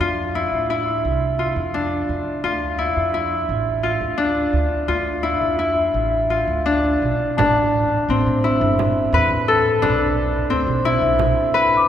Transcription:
0.00 0.46 F2 medium
0.00 1.74 D4 medium
0.00 0.41 F4 medium
0.35 0.70 E4 medium
0.52 0.98 A2 medium
0.70 1.45 E4 medium
1.05 1.50 C2 medium
1.39 2.43 F4 medium
1.56 2.02 F2 medium
1.74 4.17 D4 medium
2.09 2.25 F2 medium
2.44 2.90 D2 medium
2.44 2.85 F4 medium
2.79 3.14 E4 medium
2.96 3.42 F2 medium
3.14 3.89 E4 medium
3.49 3.94 A1 medium
3.83 4.88 F4 medium
4.01 4.47 D2 medium
4.18 6.65 D4 medium
4.53 4.69 D2 medium
4.88 5.34 D2 medium
4.88 5.29 F4 medium
5.23 5.58 E4 medium
5.41 5.87 F2 medium
5.59 6.36 E4 medium
5.94 6.41 A1 medium
6.30 8.50 F4 medium
6.48 6.95 D2 medium
6.66 7.38 D4 medium
7.02 7.18 B1 medium
7.37 7.99 A1 medium
7.37 9.82 D4 medium
7.37 8.42 A5 soft
7.37 frame drum medium
8.09 8.24 A1 medium
8.09 9.20 C4 medium
8.26 8.57 A2 medium
8.44 10.85 E4 medium
8.61 9.06 G1 medium
8.79 frame drum medium
9.13 9.28 E2 medium
9.13 10.56 B4 medium
9.13 frame drum soft
9.30 9.83 A1 medium
9.48 11.68 A4 medium
9.48 10.13 E6 medium
9.82 10.42 B1 medium
9.82 11.88 D4 medium
9.82 frame drum medium
10.50 10.65 D2 medium
10.50 11.60 C4 medium
10.67 10.97 B1 medium
10.85 11.88 E4 medium
11.01 11.31 B1 medium
11.19 frame drum soft
11.54 11.88 B4 medium
11.54 11.88 B5 soft
11.54 frame drum soft
11.77 11.88 D6 soft

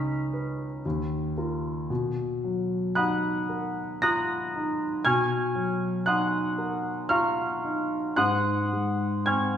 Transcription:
0.00 0.81 C#2 soft
0.00 0.12 C#4 soft
0.00 0.64 D#4 soft
0.00 1.34 D#5 soft
0.00 1.34 G#5 soft
0.00 1.33 B5 soft
0.00 0.81 C#6 soft
0.00 0.87 D#6 medium
0.00 0.84 F6 soft
0.00 0.85 B6 soft
0.34 0.85 B4 soft
0.86 1.87 D#2 medium
1.38 1.86 F4 soft
1.38 1.86 A#4 soft
1.90 4.99 B2 medium
2.44 3.28 F#3 soft
2.95 3.80 D#4 soft
2.95 3.97 F#5 medium
2.95 3.97 B5 medium
2.95 3.97 D#6 medium
2.95 4.01 F#6 medium
3.49 4.32 A#4 soft
4.02 4.84 F4 soft
4.02 5.00 A#5 medium
4.02 5.00 D#6 medium
4.02 5.00 F#6 medium
4.02 5.04 A#6 medium
4.56 5.05 D#4 soft
5.05 8.13 B2 medium
5.05 6.02 G#5 medium
5.05 6.02 C#6 medium
5.05 6.02 F6 medium
5.05 6.05 G#6 medium
5.55 6.36 F#3 soft
6.06 6.88 D#4 soft
6.06 7.06 F#5 medium
6.06 7.06 C6 medium
6.06 7.06 D#6 medium
6.06 7.09 F#6 medium
6.58 7.42 A#4 soft
7.09 7.95 F4 soft
7.09 8.13 F5 medium
7.09 8.13 A#5 medium
7.09 8.13 C#6 medium
7.09 8.17 F6 medium
7.64 8.17 D#4 soft
8.16 9.57 G#2 medium
8.16 9.23 F#5 medium
8.16 9.23 C6 medium
8.16 9.24 D#6 medium
8.16 9.27 F#6 medium
8.72 9.57 G#3 soft
9.26 9.57 C4 soft
9.26 9.57 G#5 medium
9.26 9.57 C#6 medium
9.26 9.57 F6 medium
9.26 9.57 G#6 medium

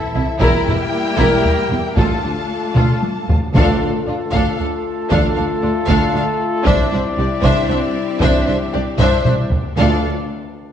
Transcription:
0.00 0.37 E3 medium
0.00 0.42 C4 medium
0.00 0.36 E4 medium
0.00 0.39 E4 loud
0.00 0.37 A4 medium
0.00 0.42 A4 medium
0.00 0.37 E5 medium
0.00 0.39 E5 loud
0.15 0.23 C2 medium
0.15 0.24 C3 medium
0.15 0.23 E4 medium
0.15 0.24 E4 medium
0.40 0.48 E1 loud
0.40 0.51 E2 loud
0.40 1.93 G3 loud
0.40 1.97 A#3 loud
0.40 1.92 E4 loud
0.40 1.93 E4 loud
0.40 0.65 E4 loud
0.40 1.97 G4 loud
0.40 1.93 A#4 loud
0.40 0.65 A#4 loud
0.40 1.93 E5 loud
0.40 1.97 G5 loud
0.40 taiko loud
0.66 0.74 E1 medium
0.66 0.76 E2 medium
0.66 0.75 E4 medium
1.18 1.26 E1 loud
1.18 1.28 E2 loud
1.18 1.42 E4 loud
1.18 1.43 A#4 loud
1.18 taiko medium
1.45 taiko low medium
1.69 1.77 E1 medium
1.69 1.80 E2 medium
1.69 1.79 E4 medium
1.69 1.80 G4 medium
1.96 2.05 D2 medium
1.96 2.06 D2 medium
1.96 3.53 A3 medium
1.96 3.25 A3 medium
1.96 3.54 D4 medium
1.96 3.25 F4 medium
1.96 2.22 F4 medium
1.96 3.54 A4 medium
1.96 3.25 A4 medium
1.96 2.22 A4 medium
1.96 3.54 F5 medium
1.96 3.32 A5 medium
1.96 taiko loud
2.23 2.31 D2 medium
2.23 2.33 D2 medium
2.23 2.32 D4 medium
2.23 2.32 F4 medium
2.76 2.84 D2 medium
2.76 2.85 D2 medium
2.76 3.01 F4 medium
2.76 3.01 A4 medium
2.76 taiko mid medium
3.02 taiko high medium
3.28 3.36 D2 medium
3.28 3.38 D2 medium
3.28 3.37 F4 medium
3.28 taiko low loud
3.54 3.79 D2 medium
3.54 3.80 D2 medium
3.54 4.29 D3 loud
3.54 6.62 A3 medium
3.54 6.63 A3 medium
3.54 3.79 D4 loud
3.54 9.74 D4 loud
3.54 6.63 F4 loud
3.54 6.62 A4 medium
3.54 6.62 A4 loud
3.54 3.80 A4 medium
3.54 3.79 F5 loud
3.54 6.62 F5 loud
3.54 taiko loud
3.80 3.88 D2 medium
3.80 3.90 D2 medium
3.80 3.89 D4 medium
3.80 3.91 A4 medium
3.80 3.89 F5 medium
4.07 4.15 D2 medium
4.07 4.16 D4 medium
4.07 4.17 F4 medium
4.07 4.15 D5 medium
4.31 4.40 D2 medium
4.31 4.41 D2 medium
4.31 4.58 D4 medium
4.31 4.58 A4 medium
4.31 4.56 F5 medium
4.31 taiko medium
4.57 4.66 D2 medium
4.57 4.67 D2 medium
4.57 4.67 D4 medium
4.57 4.68 A4 medium
4.57 4.65 F5 medium
5.11 5.19 D2 medium
5.11 5.35 D4 medium
5.11 5.35 A4 medium
5.11 5.35 F5 medium
5.11 taiko loud
5.36 5.45 D2 medium
5.36 5.46 D2 medium
5.36 5.45 D4 medium
5.36 5.45 A4 medium
5.36 5.44 F5 medium
5.62 5.70 D2 medium
5.62 5.72 D2 medium
5.62 5.70 D4 medium
5.62 5.71 F4 medium
5.62 5.70 D5 medium
5.87 5.96 D2 loud
5.87 5.97 D2 medium
5.87 6.12 D4 medium
5.87 6.13 A4 medium
5.87 6.12 F5 loud
5.87 taiko medium
6.13 6.22 D2 medium
6.13 6.23 D2 medium
6.13 6.21 D4 medium
6.13 6.24 A4 medium
6.13 6.24 F5 medium
6.65 6.73 C2 medium
6.65 6.75 C2 medium
6.65 9.52 G3 medium
6.65 9.77 C4 loud
6.65 6.89 D4 loud
6.65 9.48 E4 medium
6.65 9.77 G4 loud
6.65 6.91 C5 medium
6.65 9.48 D5 medium
6.65 9.77 E5 loud
6.65 6.90 E5 loud
6.65 taiko loud
6.91 6.99 C2 medium
6.91 7.00 C2 medium
6.91 6.99 D4 medium
6.91 7.00 C5 medium
6.91 7.01 E5 medium
7.17 7.25 C2 medium
7.17 7.26 C2 medium
7.17 7.26 D4 medium
7.17 7.27 G4 medium
7.17 7.28 D5 medium
7.43 7.51 C2 loud
7.43 7.52 C2 loud
7.43 7.67 D4 loud
7.43 7.68 C5 loud
7.43 7.68 E5 loud
7.43 taiko medium
7.69 7.77 C2 medium
7.69 7.78 D4 medium
7.69 7.77 C5 medium
7.69 7.78 E5 medium
8.20 8.29 C2 loud
8.20 8.30 C2 loud
8.20 8.45 D4 loud
8.20 8.45 C5 loud
8.20 8.45 E5 loud
8.20 taiko loud
8.46 8.55 C2 medium
8.46 8.56 C2 medium
8.46 8.55 D4 medium
8.46 8.54 C5 medium
8.46 8.56 E5 medium
8.73 8.81 C2 medium
8.73 8.82 C2 medium
8.73 8.81 D4 medium
8.73 8.81 G4 medium
8.73 8.81 D5 medium
8.98 9.06 C2 loud
8.98 9.08 C2 medium
8.98 9.24 D4 loud
8.98 9.23 C5 loud
8.98 9.23 E5 loud
8.98 taiko low-mid medium
9.25 9.33 C2 medium
9.25 9.34 C2 medium
9.25 9.34 D4 medium
9.25 9.33 C5 medium
9.25 9.34 E5 medium
9.25 taiko mid medium
9.51 taiko low loud
9.76 10.07 D2 medium
9.76 10.02 D3 loud
9.76 10.06 A3 loud
9.76 10.00 A3 loud
9.76 10.06 D4 loud
9.76 10.07 D4 medium
9.76 10.00 F4 medium
9.76 10.06 A4 loud
9.76 10.07 A4 medium
9.76 10.00 D5 medium
9.76 10.06 F5 loud
9.76 10.07 F5 medium

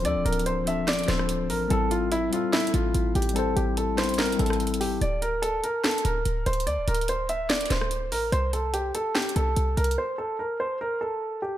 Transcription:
0.00 0.02 F3 medium
0.00 0.46 F3 loud
0.00 0.04 C4 medium
0.00 0.47 C4 medium
0.00 0.06 D4 medium
0.00 0.08 A4 loud
0.05 0.17 D2 loud
0.05 0.48 D4 medium
0.05 0.49 A4 loud
0.05 0.22 D5 medium
0.05 closed hi-hat medium
0.16 0.25 D1 loud
0.25 1.05 D1 loud
0.25 0.43 A#4 medium
0.25 closed hi-hat medium
0.33 closed hi-hat medium
0.39 closed hi-hat soft
0.46 0.64 C5 medium
0.46 closed hi-hat medium
0.64 0.94 F3 medium
0.64 0.95 C4 medium
0.64 0.96 D4 medium
0.64 0.85 E5 medium
0.64 closed hi-hat medium
0.70 0.97 A4 medium
0.88 1.05 D5 loud
0.88 snare loud
0.88 closed hi-hat medium
0.93 closed hi-hat medium
0.99 closed hi-hat medium
1.04 1.49 F3 medium
1.04 1.50 C4 medium
1.04 closed hi-hat medium
1.08 1.51 D1 loud
1.08 1.51 D4 medium
1.08 1.52 A4 medium
1.08 1.47 C5 medium
1.08 snare medium
1.08 closed hi-hat medium
1.19 cross-stick medium
1.29 closed hi-hat medium
1.50 1.69 A1 loud
1.50 1.67 A#4 medium
1.50 open hi-hat medium
1.68 2.30 A1 loud
1.68 2.11 G3 loud
1.68 2.12 C4 medium
1.68 2.13 E4 medium
1.68 1.88 A4 medium
1.68 closed hi-hat medium
1.73 2.14 A4 loud
1.91 2.08 F4 medium
1.91 closed hi-hat medium
2.12 2.29 E4 loud
2.12 closed hi-hat medium
2.30 2.88 G3 medium
2.30 2.89 C4 medium
2.30 2.90 E4 medium
2.30 2.50 F4 medium
2.30 closed hi-hat medium
2.35 2.91 A4 medium
2.53 2.70 E4 loud
2.53 snare loud
2.53 closed hi-hat soft
2.60 closed hi-hat medium
2.67 closed hi-hat medium
2.74 2.94 A1 loud
2.74 3.13 F4 medium
2.74 closed hi-hat medium
2.94 3.14 A1 loud
2.94 closed hi-hat medium
3.15 3.55 A1 loud
3.15 3.33 G4 medium
3.15 closed hi-hat soft
3.22 closed hi-hat medium
3.29 closed hi-hat medium
3.33 3.77 G3 loud
3.33 3.78 C4 medium
3.33 3.79 E4 medium
3.33 3.53 A4 medium
3.33 closed hi-hat medium
3.39 3.80 C5 loud
3.56 4.36 A1 loud
3.56 3.74 G4 medium
3.56 closed hi-hat medium
3.77 3.95 A4 medium
3.77 closed hi-hat medium
3.95 4.25 G3 medium
3.95 4.26 C4 medium
3.95 4.27 E4 medium
3.95 4.15 C5 medium
3.95 snare medium
3.95 closed hi-hat medium
4.01 4.28 A4 medium
4.01 closed hi-hat medium
4.09 closed hi-hat medium
4.14 closed hi-hat medium
4.18 4.36 A#4 medium
4.18 snare loud
4.18 closed hi-hat medium
4.26 closed hi-hat medium
4.32 closed hi-hat medium
4.37 4.99 A1 loud
4.37 4.80 G3 medium
4.37 4.81 C4 medium
4.37 4.82 E4 medium
4.37 4.78 A4 medium
4.37 closed hi-hat medium
4.42 4.83 A4 medium
4.46 closed hi-hat medium
4.50 cross-stick medium
4.50 closed hi-hat medium
4.60 closed hi-hat soft
4.67 closed hi-hat medium
4.74 closed hi-hat medium
4.81 4.98 G4 medium
4.81 open hi-hat medium
5.01 5.61 D1 loud
5.01 5.19 D5 medium
5.01 closed hi-hat medium
5.22 5.40 A#4 medium
5.22 closed hi-hat medium
5.42 5.60 A4 medium
5.42 closed hi-hat medium
5.64 5.81 A#4 medium
5.64 closed hi-hat medium
5.84 6.01 A4 medium
5.84 snare loud
5.84 closed hi-hat soft
5.91 closed hi-hat medium
5.98 closed hi-hat medium
6.05 6.25 D1 loud
6.05 6.44 A#4 medium
6.05 closed hi-hat medium
6.25 6.45 D1 loud
6.25 closed hi-hat medium
6.46 6.69 D1 loud
6.46 6.64 C5 medium
6.46 closed hi-hat soft
6.53 closed hi-hat medium
6.60 closed hi-hat medium
6.67 6.79 D2 loud
6.67 6.84 D5 medium
6.67 closed hi-hat medium
6.78 6.87 D1 loud
6.88 7.67 D1 loud
6.88 7.05 A#4 medium
6.88 closed hi-hat medium
6.95 closed hi-hat medium
7.01 closed hi-hat soft
7.08 7.26 C5 medium
7.08 closed hi-hat medium
7.29 7.47 E5 medium
7.29 closed hi-hat medium
7.50 7.67 D5 medium
7.50 snare loud
7.50 closed hi-hat medium
7.55 closed hi-hat medium
7.61 closed hi-hat medium
7.66 closed hi-hat medium
7.70 8.13 D1 loud
7.70 8.10 C5 medium
7.70 snare medium
7.70 closed hi-hat medium
7.81 cross-stick medium
7.91 closed hi-hat medium
8.12 8.31 A1 loud
8.12 8.29 A#4 medium
8.12 open hi-hat medium
8.32 8.92 C2 loud
8.32 8.50 C5 medium
8.32 closed hi-hat medium
8.53 8.71 A4 medium
8.53 closed hi-hat medium
8.74 8.91 G4 medium
8.74 closed hi-hat medium
8.95 9.12 A4 medium
8.95 closed hi-hat medium
9.15 9.32 G4 medium
9.15 snare loud
9.15 closed hi-hat soft
9.22 closed hi-hat medium
9.29 closed hi-hat medium
9.36 9.56 C2 loud
9.36 9.75 A4 medium
9.36 closed hi-hat medium
9.56 9.77 C2 loud
9.56 closed hi-hat medium
9.77 9.97 C2 loud
9.77 9.95 A#4 medium
9.77 closed hi-hat soft
9.84 closed hi-hat medium
9.91 closed hi-hat medium
9.98 10.15 C5 medium
10.18 10.36 A4 medium
10.39 10.57 A#4 medium
10.60 10.77 C5 medium
10.81 10.98 A#4 medium
11.01 11.40 A4 medium
11.42 11.58 G4 medium

